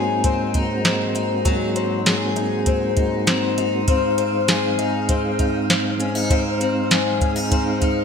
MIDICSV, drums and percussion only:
0, 0, Header, 1, 2, 480
1, 0, Start_track
1, 0, Tempo, 606061
1, 1152, Time_signature, 4, 2, 24, 8
1, 6372, End_track
2, 0, Start_track
2, 0, Title_t, "Drums"
2, 190, Note_on_c, 9, 42, 68
2, 192, Note_on_c, 9, 36, 78
2, 269, Note_off_c, 9, 42, 0
2, 272, Note_off_c, 9, 36, 0
2, 429, Note_on_c, 9, 42, 41
2, 433, Note_on_c, 9, 36, 70
2, 508, Note_off_c, 9, 42, 0
2, 512, Note_off_c, 9, 36, 0
2, 672, Note_on_c, 9, 42, 60
2, 673, Note_on_c, 9, 38, 103
2, 751, Note_off_c, 9, 42, 0
2, 752, Note_off_c, 9, 38, 0
2, 915, Note_on_c, 9, 42, 43
2, 995, Note_off_c, 9, 42, 0
2, 1152, Note_on_c, 9, 36, 89
2, 1152, Note_on_c, 9, 42, 56
2, 1231, Note_off_c, 9, 36, 0
2, 1231, Note_off_c, 9, 42, 0
2, 1393, Note_on_c, 9, 42, 48
2, 1473, Note_off_c, 9, 42, 0
2, 1633, Note_on_c, 9, 42, 71
2, 1635, Note_on_c, 9, 38, 89
2, 1712, Note_off_c, 9, 42, 0
2, 1714, Note_off_c, 9, 38, 0
2, 1873, Note_on_c, 9, 42, 40
2, 1953, Note_off_c, 9, 42, 0
2, 2108, Note_on_c, 9, 42, 62
2, 2112, Note_on_c, 9, 36, 79
2, 2187, Note_off_c, 9, 42, 0
2, 2191, Note_off_c, 9, 36, 0
2, 2349, Note_on_c, 9, 42, 42
2, 2352, Note_on_c, 9, 36, 74
2, 2428, Note_off_c, 9, 42, 0
2, 2431, Note_off_c, 9, 36, 0
2, 2592, Note_on_c, 9, 38, 95
2, 2592, Note_on_c, 9, 42, 60
2, 2671, Note_off_c, 9, 38, 0
2, 2671, Note_off_c, 9, 42, 0
2, 2834, Note_on_c, 9, 42, 44
2, 2913, Note_off_c, 9, 42, 0
2, 3071, Note_on_c, 9, 36, 94
2, 3071, Note_on_c, 9, 42, 52
2, 3150, Note_off_c, 9, 42, 0
2, 3151, Note_off_c, 9, 36, 0
2, 3311, Note_on_c, 9, 42, 45
2, 3390, Note_off_c, 9, 42, 0
2, 3551, Note_on_c, 9, 42, 69
2, 3553, Note_on_c, 9, 38, 97
2, 3630, Note_off_c, 9, 42, 0
2, 3632, Note_off_c, 9, 38, 0
2, 3792, Note_on_c, 9, 42, 40
2, 3871, Note_off_c, 9, 42, 0
2, 4030, Note_on_c, 9, 42, 64
2, 4032, Note_on_c, 9, 36, 74
2, 4109, Note_off_c, 9, 42, 0
2, 4111, Note_off_c, 9, 36, 0
2, 4270, Note_on_c, 9, 42, 43
2, 4273, Note_on_c, 9, 36, 66
2, 4349, Note_off_c, 9, 42, 0
2, 4352, Note_off_c, 9, 36, 0
2, 4514, Note_on_c, 9, 42, 59
2, 4515, Note_on_c, 9, 38, 93
2, 4593, Note_off_c, 9, 42, 0
2, 4594, Note_off_c, 9, 38, 0
2, 4755, Note_on_c, 9, 42, 43
2, 4834, Note_off_c, 9, 42, 0
2, 4992, Note_on_c, 9, 36, 87
2, 4995, Note_on_c, 9, 42, 52
2, 5072, Note_off_c, 9, 36, 0
2, 5074, Note_off_c, 9, 42, 0
2, 5235, Note_on_c, 9, 42, 47
2, 5314, Note_off_c, 9, 42, 0
2, 5473, Note_on_c, 9, 42, 72
2, 5475, Note_on_c, 9, 38, 101
2, 5552, Note_off_c, 9, 42, 0
2, 5555, Note_off_c, 9, 38, 0
2, 5713, Note_on_c, 9, 36, 79
2, 5715, Note_on_c, 9, 42, 38
2, 5792, Note_off_c, 9, 36, 0
2, 5794, Note_off_c, 9, 42, 0
2, 5953, Note_on_c, 9, 36, 80
2, 5953, Note_on_c, 9, 42, 64
2, 6032, Note_off_c, 9, 36, 0
2, 6033, Note_off_c, 9, 42, 0
2, 6191, Note_on_c, 9, 42, 41
2, 6193, Note_on_c, 9, 36, 77
2, 6270, Note_off_c, 9, 42, 0
2, 6272, Note_off_c, 9, 36, 0
2, 6372, End_track
0, 0, End_of_file